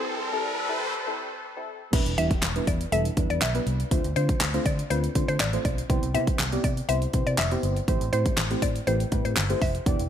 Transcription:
Already playing: G3 C4 E4 A4, riser
0.32 G3 C4 E4 A4
0.69 G3 C4 E4 A4
1.07 G3 C4 E4 A4
1.56 G3 C4 E4 A4
1.93 E1 G3 B3 D4 E4 B4, kick, closed hi-hat, crash, impact
2.06 E1, closed hi-hat
2.18 E2 G3 B3 D4 E4 G4 E5, closed hi-hat
2.31 kick, closed hi-hat
2.42 E1, snare, clap, closed hi-hat
2.56 G3 B3 D4 E4 B4, closed hi-hat
2.67 E2 D5, kick, closed hi-hat
2.81 closed hi-hat
2.92 E1 G3 B3 D4 E4 A4 E5, closed hi-hat
3.05 closed hi-hat
3.17 E2 G3 B3 D4 E4 B4, kick, closed hi-hat
3.30 E2 D5, closed hi-hat
3.41 B1 E5, snare, clap, closed hi-hat
3.55 G3 B3 D4 E4 B4, closed hi-hat
3.67 C2, closed hi-hat
3.80 closed hi-hat
3.91 D2 A3 C4 D4 F4 C5, kick, closed hi-hat
4.04 D2, closed hi-hat
4.16 D3 A3 C4 D4 F4 C5, closed hi-hat
4.29 kick, closed hi-hat
4.40 D2, snare, clap, closed hi-hat
4.54 A3 C4 D4 F4 C5, closed hi-hat
4.66 D3 D5, kick, closed hi-hat
4.79 closed hi-hat
4.90 D2 A3 C4 D4 F4 B4 C5, closed hi-hat
5.04 closed hi-hat
5.15 D3 A3 C4 D4 F4 C5, kick, closed hi-hat
5.28 D3 C5, closed hi-hat
5.40 A1 D5, snare, clap, closed hi-hat
5.53 A3 C4 D4 F4 C5, closed hi-hat
5.65 B1 D5, kick, closed hi-hat
5.78 closed hi-hat
5.90 C2 B3 C4 E4 G4 C5, kick, closed hi-hat
6.03 C2, closed hi-hat
6.14 C3 B3 C4 E4 G4 C5 E5, closed hi-hat
6.27 kick, closed hi-hat
6.39 C2, snare, clap, closed hi-hat
6.52 B3 C4 E4 G4 D5, closed hi-hat
6.64 C3 D5, kick, closed hi-hat
6.77 closed hi-hat
6.89 C2 B3 C4 E4 G4 C5 E5, closed hi-hat
7.02 closed hi-hat
7.13 C3 B3 C4 E4 G4 C5, kick, closed hi-hat
7.27 C3 D5, closed hi-hat
7.38 F1 E5, snare, clap, closed hi-hat
7.51 B3 C4 E4 G4 C5, closed hi-hat
7.63 G1, closed hi-hat
7.76 closed hi-hat
7.88 A1 A3 C4 E4 G4 C5, kick, closed hi-hat
8.01 A1, closed hi-hat
8.13 A2 A3 C4 E4 G4 C5, closed hi-hat
8.26 kick, closed hi-hat
8.37 A1, snare, clap, closed hi-hat
8.51 A3 C4 E4 G4 C5, closed hi-hat
8.62 A2 D5, kick, closed hi-hat
8.76 closed hi-hat
8.87 A1 A3 C4 E4 G4 B4 C5, closed hi-hat
9.00 closed hi-hat
9.12 A2 A3 C4 E4 G4 B4, kick, closed hi-hat
9.25 A2 C5, closed hi-hat
9.36 G1, snare, clap, closed hi-hat
9.50 A3 C4 E4 G4 C5, closed hi-hat
9.62 F1 E5, kick, open hi-hat
9.75 closed hi-hat
9.86 E1 E3 B3 D4 E4 G4 D5, kick, closed hi-hat
9.99 E1, closed hi-hat

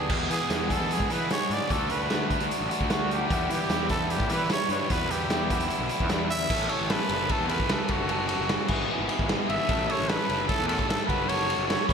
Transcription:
Already playing: G#4
0.09 E2 B2 E3 G#3 B3 G#4, kick, crash
0.28 E3 G#3 B3 G#4, closed hi-hat
0.32 G#4
0.48 E2 E3 G#3 B3 G#4, snare, closed hi-hat
0.61 snare
0.68 E3 G#3 B3 G#4 A4, kick, closed hi-hat
0.79 E2
0.91 G#4, closed hi-hat
1.00 G#2, kick
1.09 E3 G#3 B3 G#4 B4, closed hi-hat
1.29 E2 B2 E3 G#3 B3 G#4 C#5, snare, closed hi-hat
1.50 G#2 D5, closed hi-hat
1.69 D2 D3 A3 D4 F#4 A4, kick, closed hi-hat
1.89 D2 A3 D4 F#4 B4, closed hi-hat
2.10 D2 D3 A3 D4 F#4, snare, closed hi-hat
2.29 A3 D4 F#4, kick, closed hi-hat
2.40 D2, closed hi-hat
2.51 closed hi-hat
2.61 A1
2.70 A3 D4 F#4, closed hi-hat
2.80 D2, kick
2.89 D3 A3 D4 F#4, snare, closed hi-hat
3.11 G4, closed hi-hat
3.30 E2 B2 E3 G3 B3 E4, kick, closed hi-hat
3.49 E3 G3 B3 E4, closed hi-hat
3.54 G4
3.69 E2 E3 G3 B3 E4, snare, closed hi-hat
3.81 snare
3.89 E3 G3 B3 E4 A4, kick, closed hi-hat
3.99 E2
4.10 G4, closed hi-hat
4.20 A2, kick
4.29 E3 G3 B3 E4 B4, closed hi-hat
4.49 E2 B2 E3 G3 B3 E4 C#5, snare, closed hi-hat
4.69 G2 C#5, closed hi-hat
4.89 E2 B2 E3 G3 B3 E4 B4, kick, closed hi-hat
5.09 E2 G3 B3 E4 G4, closed hi-hat
5.13 E3
5.29 E2 E3 G3 B3, snare, closed hi-hat
5.33 E4
5.50 E3 G3 B3 E4, kick, closed hi-hat
5.59 E2, closed hi-hat
5.70 closed hi-hat
5.79 B1
5.89 G3 B3 E4, closed hi-hat
5.93 E3
6.00 E2, kick
6.09 E2 B2 E3 G3 B3 E4, snare, closed hi-hat
6.30 E5, closed hi-hat
6.50 A1 A2 E3 A3 C#4 A4, kick, crash
6.69 A3 C#4 A4 C#5, ride
6.80 A1
6.90 B4, snare, ride
7.00 snare
7.09 F#1 A3 C#4 A4, ride
7.29 A2 E3 A3 C#4 A4, kick, ride
7.40 E2
7.49 C#4 A4 B4, ride
7.53 A3
7.60 kick
7.69 C#2 E3 A3 C#4, snare, ride
7.73 A4
7.88 F#1 C#3 F#3 A3 C#4 F#4 A4, kick, ride
7.93 F#2
8.09 F#2 C#3 F#3 A3 C#4 A4, ride
8.28 F#3 A3 C#4 A4, ride
8.39 F#1
8.49 snare, ride
8.68 G#1 G#3 B3 E4 G#4, kick, crash
8.88 G#3 B3 E4 G#4
8.99 G#1
9.08 B3 E4 G#4, ride
9.19 G#1, kick
9.28 G#3 B3 E4 G#4, snare, ride
9.48 G#1 B3 E4 G#4 E5, ride
9.68 A1 A2 A3 C#4 E4 A4, kick, ride
9.88 C#4 E4 A4 C#5, ride
9.99 A1
10.09 B4, snare, ride
10.28 F#1 C#4 E4 A4, ride
10.48 A2 A3 C#4 E4 A4, kick, ride
10.59 E2
10.67 C#4 E4 A4, ride
10.79 kick
10.87 G#1 A3 C#4 E4 A4, snare, ride
11.07 F#1 F#3 C#4 F#4 A4 B4, kick, ride
11.27 F#3 C#4 F#4 A4 C#5, ride
11.48 C#4 F#4 A4, ride
11.57 F#1
11.67 C#5, snare, ride
11.80 snare
11.89 G#1 E4 B4 C#5, kick, crash

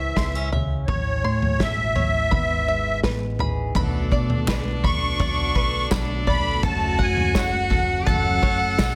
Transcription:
Already playing: C#2 G#2 E3 G#3 C#4 E4 C#5 E5 C6
0.16 C#2 B3 C6, kick, snare
0.35 C#4
0.52 C#3 C#4 E5, floor tom
0.87 A1 A2 C#4 C#5, kick, floor tom
1.24 A2 A3 C6
1.42 floor tom
1.59 A1 B2 E5, kick, snare
1.96 A2 C#5, floor tom
2.31 G#1 G#2 B3 B5, kick, floor tom
2.68 G#3 E5
3.03 A1 B3 B4, kick, snare
3.39 E3 G#4 B5, floor tom
3.75 B1 B2 D3 F#3 A3 B3 D4 F#4 A4 B4 B5, kick, floor tom
4.11 B2 A3 D4 A4 D5, kick
4.30 floor tom
4.48 B1 B4, kick, snare, clap, tambourine
4.84 B5 C#6, kick, floor tom
5.19 B1 B2 F#3 A3 D4 A4 D5, kick, floor tom
5.55 A3 D4 A4 B4, kick
5.91 B1 F#3 A3 D4 A4 B5, kick, snare, clap, tambourine
6.27 A3 D4 A4 D5 B5, kick, floor tom
6.63 F#1 F#2 C#3 F#3 A3 C#4 F#4 A4 A5, kick, floor tom
6.67 C#5
6.99 F#2 F#3 A3 C#4 A4 F#5 G#5, kick
7.17 floor tom
7.35 F#1 C#5 F#5, kick, snare, clap, tambourine
7.70 F#3 A3 C#4 A4, kick, floor tom
8.06 F#1 F#2 C#3 F#3 A3 C#4 A4 F#5 A5, kick, floor tom
8.43 F#3 A3 C#4 A4 C#5, kick
8.78 B1 F#3 A3 C#4 A4, kick, snare, clap, tambourine

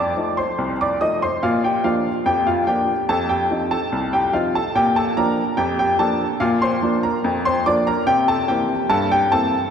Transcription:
Already playing: F2 D5 D6
0.17 F3 A3 D#4
0.37 C5 C6
0.58 C2
0.81 D5 D6
1.01 F3 A3 D#4 D#5 D#6
1.22 C5 C6
1.43 A#2 F4 F5
1.64 G4 G5
1.84 F3 A#3 D4 F4 F5
2.26 F2 G4 G5
2.47 F4 F5
2.67 F3 A#3 D4 G4 G5
3.09 F2 A4 A5
3.29 G4 G5
3.51 F3 C4 D#4
3.71 A4 A5
3.92 C2
4.13 G4 G5
4.33 F3 C4 D#4 F4 F5
4.55 A4 A5
4.75 A#2 G4 G5
4.96 A4 A5
5.17 F3 A#3 D4 A#4 A#5
5.57 F2 G4 G5
5.79 G4 G5
5.99 F3 A#3 D4 A4 A5
6.40 A#2 F4 F5
6.62 C5 C6
6.82 F3 A#3 D4
7.03 A#4 A#5
7.24 F2
7.45 C5 C6
7.66 F3 A#3 D4 D5 D6
7.87 A#4 A#5
8.07 C3 G4 G5
8.28 A4 A5
8.48 E3 A#3 C4 G4 G5
8.90 G2 A4 A5
9.12 G4 G5
9.32 E3 A#3 C4 A4 A5

